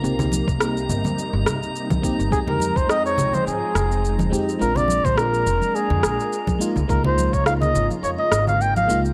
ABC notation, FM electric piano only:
X:1
M:4/4
L:1/16
Q:"Swing 16ths" 1/4=105
K:Fm
V:1 name="FM electric piano"
[B,CEG] [B,CEG]2 z [B,CEG]8- [B,CEG]2 [B,CEG] z | [A,CEG] [A,CEG]2 z [A,CEg]8- [A,CEg]2 [A,CEG] z | [A,C=DF] [A,CDF]2 z [A,CDF]8- [A,CDF]2 [A,B,EF] z | [A,B,EF] [A,B,EF]2 z [A,B,EF]8- [A,B,EF]2 [A,B,EF] z |]